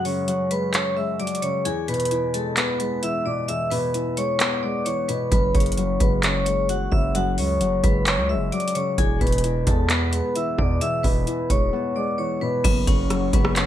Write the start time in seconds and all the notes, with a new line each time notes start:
Already playing: F#2 C#3 F#3 G#3 C#4
0.05 C#3 C#5 C#6, open hi-hat
0.28 F#3, closed hi-hat
0.51 G#3 B4 B5, closed hi-hat
0.74 C#4 C#5 C#6, clap, closed hi-hat
0.97 G#3 E5 E6
1.20 F#3 D5 D6, closed hi-hat
1.27 closed hi-hat
1.35 closed hi-hat
1.42 C#3 C#5 C#6, closed hi-hat
1.65 E2 G#4 G#5, closed hi-hat
1.88 B2 B4 B5, closed hi-hat
1.94 closed hi-hat
2.00 closed hi-hat
2.05 closed hi-hat
2.11 E3, closed hi-hat
2.34 G#3 A4 A5, closed hi-hat
2.57 B3 B4 B5, clap, closed hi-hat
2.80 G#3 B4 B5, closed hi-hat
3.03 E3 E5 E6, closed hi-hat
3.26 B2 D5 D6
3.48 E2 E5 E6, closed hi-hat
3.70 B2 B4 B5, open hi-hat
3.94 E3, closed hi-hat
4.17 G#3 C#5 C#6, closed hi-hat
4.40 B3, clap, closed hi-hat
4.63 G#3 D5 D6
4.85 E3 C#5 C#6, closed hi-hat
5.09 B2 B4 B5, closed hi-hat
5.31 F#1 F#2 B4 B5, kick, closed hi-hat
5.54 F#1 C#3 C#5 C#6, kick, closed hi-hat
5.60 closed hi-hat
5.66 closed hi-hat
5.72 closed hi-hat
5.78 F#3, closed hi-hat
6.00 F#1 G#3 B4 B5, kick, closed hi-hat
6.23 C#4 C#5 C#6, clap, closed hi-hat
6.46 G#3 C#5 C#6, closed hi-hat
6.69 F#3 F#4 F#5, closed hi-hat
6.92 F#1 C#3 E5 E6, kick
7.15 F#2 F#4 F#5, closed hi-hat
7.38 C#2 C#3 C#5 C#6, open hi-hat
7.61 F#1 F#3, closed hi-hat
7.83 F#1 G#3 B4 B5, kick, closed hi-hat
8.07 C#4 C#5 C#6, clap, closed hi-hat
8.18 C#2
8.29 G#3 E5 E6
8.35 F#1
8.52 F#3 D5 D6, closed hi-hat
8.60 closed hi-hat
8.68 closed hi-hat
8.75 C#3 C#5 C#6, closed hi-hat
8.98 E1 E2 G#4 G#5, kick, closed hi-hat
9.21 E1 B2 B4 B5, kick, closed hi-hat
9.27 closed hi-hat
9.32 closed hi-hat
9.38 closed hi-hat
9.44 E3, closed hi-hat
9.67 E2 G#3 A4 A5, kick, closed hi-hat
9.90 B3 B4 B5, clap, closed hi-hat
10.13 G#3 B4 B5, closed hi-hat
10.36 E3 E5 E6, closed hi-hat
10.58 E2 B2 D5 D6, kick
10.81 E2 E5 E6, closed hi-hat
11.03 E1 B2 B4 B5, kick, open hi-hat
11.27 E3, closed hi-hat
11.50 E1 G#3 C#5 C#6, kick, closed hi-hat
11.73 B3
11.96 G#3 D5 D6
12.18 E3 C#5 C#6
12.41 B2 B4 B5
12.64 F#1 F#2 B3 G#4 B4 C#5 F#5 C#6, kick, closed hi-hat, crash
12.87 F#1 C#3 C#4 C#5, kick, closed hi-hat
13.10 F#3, cross-stick, closed hi-hat
13.33 F#1 G#3 B3 B4, kick, closed hi-hat
13.45 cross-stick
13.56 C#4 C#5, clap, closed hi-hat